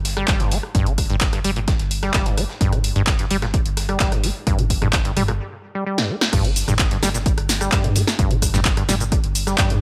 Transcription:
Already playing: analog synth bass G1
0.05 snare, closed hi-hat, open hi-hat
0.17 acid bass G3, cross-stick, closed hi-hat
0.28 analog synth bass G1, acid bass G3, kick, cross-stick, snare, clap, closed hi-hat
0.40 acid bass G2, closed hi-hat
0.51 acid bass A#3, snare, closed hi-hat, open hi-hat
0.63 cross-stick
0.75 analog synth bass G1, acid bass G2, kick, closed hi-hat
0.86 acid bass D3, closed hi-hat
0.98 kick, cross-stick, closed hi-hat, open hi-hat
1.10 analog synth bass G1, acid bass G2, closed hi-hat
1.21 kick, snare, clap, closed hi-hat
1.33 acid bass G2, cross-stick, closed hi-hat
1.44 analog synth bass G1, acid bass G3, closed hi-hat, open hi-hat
1.56 acid bass A#2, closed hi-hat
1.68 kick, cross-stick, snare, closed hi-hat
1.79 analog synth bass G1, snare, closed hi-hat
1.91 closed hi-hat, open hi-hat
2.03 acid bass G3, cross-stick, snare, closed hi-hat
2.14 analog synth bass G1, acid bass G3, kick, snare, clap, closed hi-hat
2.26 acid bass G2, closed hi-hat
2.38 acid bass A#3, cross-stick, closed hi-hat, open hi-hat
2.49 snare
2.61 analog synth bass G1, acid bass G2, kick, closed hi-hat
2.73 acid bass D3, cross-stick, closed hi-hat, mid tom
2.84 closed hi-hat, open hi-hat
2.96 analog synth bass G1, acid bass G2, closed hi-hat
3.07 kick, cross-stick, snare, clap, closed hi-hat
3.19 acid bass G2, snare, closed hi-hat
3.31 analog synth bass G1, acid bass G3, closed hi-hat, open hi-hat
3.42 acid bass A#2, cross-stick, snare, closed hi-hat
3.54 kick, closed hi-hat
3.66 analog synth bass G1, closed hi-hat
3.77 cross-stick, snare, closed hi-hat, open hi-hat
3.89 acid bass G3, cross-stick, closed hi-hat
4.00 analog synth bass G1, acid bass G3, kick, snare, clap, closed hi-hat
4.12 acid bass G2, cross-stick, closed hi-hat
4.24 acid bass A#3, snare, closed hi-hat, open hi-hat
4.47 analog synth bass G1, acid bass G2, kick, cross-stick, closed hi-hat
4.59 acid bass D3, closed hi-hat, mid tom
4.70 kick, closed hi-hat, open hi-hat
4.82 analog synth bass G1, acid bass G2, cross-stick, closed hi-hat, mid tom
4.93 kick, snare, clap, closed hi-hat
5.05 acid bass G2, closed hi-hat
5.17 analog synth bass G1, acid bass G3, cross-stick, closed hi-hat, mid tom, open hi-hat
5.28 acid bass A#2, cross-stick, closed hi-hat
5.75 acid bass G3
5.86 acid bass G3
5.98 acid bass G2, snare
6.10 acid bass A#3
6.21 snare
6.33 analog synth bass G1, acid bass G2, kick, cross-stick, closed hi-hat, crash, cabasa
6.45 acid bass D3, closed hi-hat
6.56 closed hi-hat, open hi-hat, cabasa
6.68 analog synth bass G1, acid bass G2, cross-stick, closed hi-hat, mid tom, cabasa
6.79 kick, snare, clap, closed hi-hat, cabasa
6.91 acid bass G2, snare, closed hi-hat
7.03 analog synth bass G1, acid bass G3, cross-stick, snare, closed hi-hat, open hi-hat, cabasa
7.14 acid bass A#2, snare, closed hi-hat, cabasa
7.26 kick, closed hi-hat, cabasa
7.38 analog synth bass G1, cross-stick, closed hi-hat
7.49 snare, closed hi-hat, open hi-hat, cabasa
7.61 acid bass G3, cross-stick, closed hi-hat, cabasa
7.72 analog synth bass G2, acid bass G3, kick, cross-stick, snare, clap, closed hi-hat, cabasa
7.84 acid bass G2, closed hi-hat, mid tom
7.96 acid bass A#3, snare, closed hi-hat, open hi-hat, cabasa
8.07 cross-stick, snare, cabasa
8.19 analog synth bass G1, acid bass G2, kick, closed hi-hat, cabasa
8.31 acid bass D3, closed hi-hat, mid tom
8.42 kick, cross-stick, closed hi-hat, open hi-hat, cabasa
8.54 analog synth bass G1, acid bass G2, snare, closed hi-hat, mid tom, cabasa
8.65 kick, snare, clap, closed hi-hat, cabasa
8.77 acid bass G2, cross-stick, closed hi-hat
8.89 analog synth bass G1, acid bass G3, snare, closed hi-hat, mid tom, open hi-hat, cabasa
9.00 acid bass A#2, closed hi-hat, cabasa
9.12 kick, cross-stick, closed hi-hat, cabasa
9.24 analog synth bass G1, closed hi-hat
9.35 closed hi-hat, open hi-hat, cabasa
9.47 acid bass G3, cross-stick, snare, closed hi-hat, cabasa
9.58 analog synth bass G2, acid bass G3, kick, snare, clap, closed hi-hat, cabasa
9.70 acid bass G2, closed hi-hat

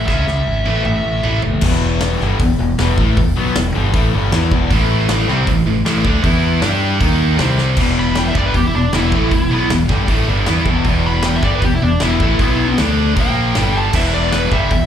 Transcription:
0.06 fingered electric bass C#2, overdriven electric guitar C#3 G#3 C#4, lead electric guitar E5, kick, snare
0.27 fingered electric bass C#2, snare
0.47 fingered electric bass G#1
0.66 fingered electric bass A1, overdriven electric guitar A2 E3 A3, high tom
0.84 fingered electric bass A1, lead electric guitar E5, mid tom
1.04 fingered electric bass A1
1.23 fingered electric bass A1, overdriven electric guitar A2 E3 A3, floor tom
1.42 fingered electric bass F#1, floor tom
1.61 fingered electric bass E1, overdriven electric guitar E2 B2 E3, kick, crash
2.01 snare, open hi-hat
2.20 fingered electric bass G1, overdriven electric guitar G2 D3 G3, snare
2.39 fingered electric bass E1, overdriven electric guitar E2 B2, kick, open hi-hat
2.59 fingered electric bass E1, overdriven electric guitar E2 B2
2.78 fingered electric bass E1, overdriven electric guitar E2 B2 E3, snare, open hi-hat
2.98 fingered electric bass A1, overdriven electric guitar A2 E3 A3, kick
3.17 fingered electric bass E1, overdriven electric guitar E2 B2, kick, open hi-hat
3.36 fingered electric bass B1, overdriven electric guitar B2 F#3 B3
3.55 fingered electric bass E1, overdriven electric guitar E2 B2, snare, open hi-hat
3.74 fingered electric bass G1, overdriven electric guitar G2 D3 G3
3.93 fingered electric bass A1, overdriven electric guitar A2 E3 A3, kick, open hi-hat
4.13 fingered electric bass G1, overdriven electric guitar G2 D3 G3
4.32 fingered electric bass E2, overdriven electric guitar E3 B3 E4, snare, open hi-hat
4.51 fingered electric bass E1, overdriven electric guitar E2 B2 E3, kick
4.70 fingered electric bass A1, overdriven electric guitar A2 E3 A3, kick, open hi-hat
5.09 snare, open hi-hat
5.28 fingered electric bass C2, overdriven electric guitar C3 G3 C4, snare
5.47 fingered electric bass A1, overdriven electric guitar A2 E3, kick, open hi-hat
5.66 fingered electric bass A1, overdriven electric guitar A2 E3
5.85 fingered electric bass A1, overdriven electric guitar A2 E3 A3, snare, open hi-hat
6.04 fingered electric bass D2, overdriven electric guitar D3 A3 D4, kick
6.23 fingered electric bass E2, overdriven electric guitar E3 B3 E4, kick, open hi-hat
6.62 fingered electric bass G2, overdriven electric guitar G3 D4 G4, snare, open hi-hat
7.00 fingered electric bass D#2, overdriven electric guitar D#3 A#3 D#4, kick, open hi-hat
7.38 fingered electric bass C2, overdriven electric guitar C3 G3 C4, snare, open hi-hat
7.58 snare
7.77 fingered electric bass E1, overdriven electric guitar E2 B2 E3, kick, crash
7.99 lead electric guitar B5
8.15 lead electric guitar G5, snare, open hi-hat
8.28 lead electric guitar E5
8.34 fingered electric bass G1, overdriven electric guitar G2 D3 G3, kick
8.38 lead electric guitar D5
8.46 lead electric guitar B4
8.54 fingered electric bass E1, overdriven electric guitar E2 B2, lead electric guitar G4, kick, open hi-hat
8.67 lead electric guitar E4
8.73 fingered electric bass E1, overdriven electric guitar E2 B2, lead electric guitar D4
8.93 fingered electric bass E1, overdriven electric guitar E2 B2 E3, lead electric guitar E4, snare, open hi-hat
9.12 fingered electric bass A1, overdriven electric guitar A2 E3 A3, kick
9.31 fingered electric bass E1, overdriven electric guitar E2 B2, kick, open hi-hat
9.50 fingered electric bass B1, overdriven electric guitar B2 F#3 B3
9.70 fingered electric bass E1, overdriven electric guitar E2 B2, snare, open hi-hat
9.89 fingered electric bass G1, overdriven electric guitar G2 D3 G3, kick, snare
10.08 fingered electric bass A1, overdriven electric guitar A2 E3 A3, kick, open hi-hat
10.28 fingered electric bass G1, overdriven electric guitar G2 D3 G3
10.46 fingered electric bass E2, overdriven electric guitar E3 B3 E4, snare, open hi-hat
10.65 fingered electric bass E1, overdriven electric guitar E2 B2 E3, kick
10.84 fingered electric bass E1, overdriven electric guitar E2 B2 E3, kick, open hi-hat
11.07 lead electric guitar B5
11.22 lead electric guitar G5, snare, open hi-hat
11.36 lead electric guitar E5
11.43 fingered electric bass G1, overdriven electric guitar G2 D3 G3, lead electric guitar D5, kick, snare
11.55 lead electric guitar B4
11.62 fingered electric bass E1, overdriven electric guitar E2 B2, lead electric guitar G4, kick, open hi-hat
11.75 lead electric guitar E4
11.82 fingered electric bass E1, overdriven electric guitar E2 B2, lead electric guitar D4
12.00 fingered electric bass E1, overdriven electric guitar E2 B2 E3, lead electric guitar E4, snare, open hi-hat
12.20 fingered electric bass A1, overdriven electric guitar A2 E3 A3, kick
12.39 fingered electric bass B1, overdriven electric guitar B2 F#3 B3, kick, open hi-hat
12.78 fingered electric bass D2, overdriven electric guitar D3 A3 D4, snare, open hi-hat
13.17 fingered electric bass A#1, overdriven electric guitar A#2 F3 A#3, lead electric guitar G5, kick, open hi-hat
13.55 fingered electric bass G1, overdriven electric guitar G2 D3 G3, snare, open hi-hat
13.78 lead electric guitar A5
13.93 fingered electric bass E1, overdriven electric guitar E2 B2 E3, lead electric guitar E5, kick, crash
14.14 lead electric guitar D5
14.32 lead electric guitar B4, snare, open hi-hat
14.51 fingered electric bass G1, overdriven electric guitar G2 D3 G3, lead electric guitar E5, kick
14.70 fingered electric bass E1, overdriven electric guitar E2 B2, kick, open hi-hat

